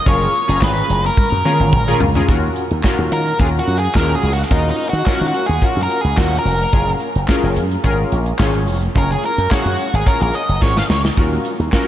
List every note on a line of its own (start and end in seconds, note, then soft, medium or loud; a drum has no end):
0.06 0.26 F#1 loud
0.06 0.33 C#4 medium
0.06 0.33 F4 medium
0.06 0.33 G#4 medium
0.06 0.33 A#4 medium
0.06 0.64 C#5 medium
0.06 kick loud
0.06 closed hi-hat loud
0.21 closed hi-hat medium
0.34 closed hi-hat medium
0.48 0.58 F#1 loud
0.48 1.09 C#4 medium
0.48 1.10 F4 medium
0.48 1.10 G#4 medium
0.48 1.10 A#5 loud
0.48 closed hi-hat medium
0.61 0.81 G#1 loud
0.61 1.06 B4 medium
0.61 kick loud
0.61 snare loud
0.61 clap medium
0.77 closed hi-hat medium
0.90 1.09 F#1 loud
0.90 closed hi-hat medium
1.05 1.98 A#4 medium
1.05 closed hi-hat medium
1.17 muted slap bass stroke soft
1.17 kick loud
1.17 high tom medium
1.32 1.41 F#2 medium
1.45 1.72 C#4 medium
1.45 1.72 F4 medium
1.45 1.72 G#4 medium
1.45 1.72 A#4 loud
1.45 mid tom medium
1.60 1.69 G#1 medium
1.60 mid tom medium
1.73 1.92 G#1 loud
1.73 kick loud
1.73 mid tom medium
1.88 2.05 C#4 loud
1.88 2.05 F4 loud
1.88 2.05 G#4 loud
1.88 2.05 A#4 loud
2.00 2.20 C#2 loud
2.00 floor tom loud
2.15 2.28 C#4 medium
2.15 2.28 F4 medium
2.15 2.29 G#4 medium
2.15 2.29 A#4 medium
2.15 floor tom medium
2.28 2.48 D#2 medium
2.28 2.64 C#4 medium
2.28 2.65 F4 medium
2.28 2.65 F#4 medium
2.28 2.65 A#4 loud
2.28 kick loud
2.28 closed hi-hat loud
2.44 closed hi-hat soft
2.56 closed hi-hat medium
2.71 2.80 D#2 medium
2.71 closed hi-hat medium
2.83 3.20 C#4 medium
2.83 3.20 F4 loud
2.83 3.20 F#4 medium
2.83 3.20 A#4 loud
2.83 kick loud
2.83 snare medium
2.83 clap medium
2.99 3.08 D#2 loud
3.12 3.31 D#3 medium
3.12 3.38 A#4 loud
3.12 closed hi-hat medium
3.27 closed hi-hat medium
3.39 3.59 D#2 loud
3.39 3.75 C#4 medium
3.39 3.75 F4 medium
3.39 3.75 F#4 medium
3.39 3.46 G#4 loud
3.39 3.76 A#4 medium
3.39 kick loud
3.39 closed hi-hat medium
3.59 3.78 F#4 medium
3.67 3.87 F#2 medium
3.67 closed hi-hat medium
3.78 3.97 G#4 medium
3.82 closed hi-hat medium
3.95 4.15 D#2 medium
3.95 4.31 C#4 medium
3.95 4.31 F4 medium
3.95 4.31 F#4 medium
3.95 4.31 G#4 medium
3.95 4.15 A#4 loud
3.95 kick loud
3.95 snare loud
3.95 clap loud
4.15 4.33 G#4 medium
4.23 4.42 C#2 medium
4.23 open hi-hat medium
4.33 4.38 F#4 medium
4.38 closed hi-hat soft
4.51 4.70 D#2 medium
4.51 4.86 C#4 medium
4.51 4.69 D#4 medium
4.51 4.86 F4 medium
4.51 4.87 F#4 medium
4.51 4.87 A#4 medium
4.51 kick loud
4.51 closed hi-hat loud
4.71 4.87 D#4 medium
4.79 closed hi-hat medium
4.89 5.02 D#3 loud
4.89 5.07 F#4 medium
4.89 closed hi-hat medium
5.06 5.42 C#4 medium
5.06 5.42 F4 medium
5.06 5.42 F#4 medium
5.06 5.26 F#4 medium
5.06 5.42 A#4 loud
5.06 muted slap bass stroke soft
5.06 kick loud
5.06 snare medium
5.06 clap medium
5.21 5.30 D#3 loud
5.21 closed hi-hat soft
5.28 5.46 F#4 medium
5.34 closed hi-hat medium
5.46 5.58 D#2 medium
5.46 5.65 G#4 medium
5.46 closed hi-hat soft
5.62 5.97 C#4 medium
5.62 5.97 F4 medium
5.62 5.98 F#4 medium
5.62 5.82 F#4 loud
5.62 5.98 A#4 medium
5.62 kick loud
5.62 closed hi-hat loud
5.77 5.86 F#2 medium
5.77 closed hi-hat soft
5.83 6.01 A#4 loud
5.90 closed hi-hat medium
6.01 6.14 C#2 medium
6.01 6.19 G#4 medium
6.01 closed hi-hat medium
6.17 6.37 D#2 medium
6.17 6.53 C#4 medium
6.17 6.53 F4 medium
6.17 6.53 F#4 medium
6.17 6.37 F#4 loud
6.17 6.53 A#4 medium
6.17 kick loud
6.17 snare loud
6.17 clap loud
6.39 6.89 A#4 medium
6.45 6.65 F1 medium
6.45 open hi-hat medium
6.60 closed hi-hat medium
6.73 6.93 F#1 loud
6.73 7.09 C#4 medium
6.73 7.09 F4 medium
6.73 7.09 G#4 medium
6.73 7.09 A#4 medium
6.73 kick loud
6.73 closed hi-hat medium
6.88 closed hi-hat soft
7.00 closed hi-hat medium
7.16 7.25 F#1 loud
7.16 closed hi-hat medium
7.28 7.64 C#4 loud
7.28 7.64 F4 medium
7.28 7.64 G#4 medium
7.28 7.64 A#4 loud
7.28 kick loud
7.28 snare loud
7.28 clap medium
7.43 7.58 F#1 loud
7.56 7.76 F#2 loud
7.56 closed hi-hat medium
7.71 closed hi-hat medium
7.84 8.04 G#1 medium
7.84 8.19 C#4 loud
7.84 8.20 F4 medium
7.84 8.20 G#4 medium
7.84 8.20 A#4 loud
7.84 kick loud
7.84 closed hi-hat medium
8.12 8.31 A#1 medium
8.12 closed hi-hat medium
8.26 closed hi-hat soft
8.39 8.68 G#1 loud
8.39 8.75 C#4 medium
8.39 8.75 F4 medium
8.39 8.75 G#4 medium
8.39 8.75 C#5 medium
8.39 kick loud
8.39 snare loud
8.39 clap loud
8.55 closed hi-hat soft
8.68 8.87 F1 medium
8.68 open hi-hat medium
8.82 closed hi-hat soft
8.95 9.15 F#1 loud
8.95 9.31 C#4 medium
8.95 9.31 F4 medium
8.95 9.31 G#4 medium
8.95 9.12 A#4 medium
8.95 9.31 C#5 medium
8.95 kick loud
8.95 closed hi-hat medium
9.12 9.23 G#4 medium
9.23 9.53 A#4 medium
9.23 closed hi-hat medium
9.38 9.47 F#2 medium
9.38 closed hi-hat medium
9.51 9.86 C#4 medium
9.51 9.96 F#4 medium
9.51 9.87 G#4 medium
9.51 9.87 C#5 loud
9.51 9.87 F5 medium
9.51 muted slap bass stroke soft
9.51 kick loud
9.51 snare loud
9.51 clap medium
9.66 9.75 F#2 medium
9.66 closed hi-hat soft
9.79 closed hi-hat medium
9.93 10.03 G#1 loud
9.93 10.08 G#4 loud
9.93 closed hi-hat medium
10.06 10.42 C#4 medium
10.06 10.42 F4 medium
10.06 10.42 G#4 medium
10.06 10.21 A#4 loud
10.06 10.42 C#5 medium
10.06 kick loud
10.06 closed hi-hat medium
10.21 10.30 A#1 medium
10.21 10.34 A#4 medium
10.34 10.61 D#5 medium
10.34 closed hi-hat medium
10.49 10.58 F#1 medium
10.49 closed hi-hat medium
10.62 10.81 G#1 medium
10.62 10.97 C#4 medium
10.62 10.97 F4 medium
10.62 10.98 G#4 medium
10.62 10.98 A#4 medium
10.62 10.77 C#5 loud
10.62 kick loud
10.62 snare medium
10.77 10.82 F5 loud
10.77 snare medium
10.89 11.09 C#2 medium
10.89 10.98 C#5 medium
10.89 snare loud
11.05 snare medium
11.17 11.37 D#2 medium
11.17 11.53 C#4 medium
11.17 11.53 F4 medium
11.17 11.53 F#4 medium
11.17 11.53 A#4 medium
11.17 kick loud
11.17 closed hi-hat loud
11.32 closed hi-hat soft
11.45 closed hi-hat medium
11.60 11.69 D#2 loud
11.60 closed hi-hat medium
11.72 11.88 C#4 loud
11.72 11.88 F4 medium
11.72 11.88 F#4 medium
11.72 11.88 A#4 loud
11.72 kick loud
11.72 snare loud
11.72 clap medium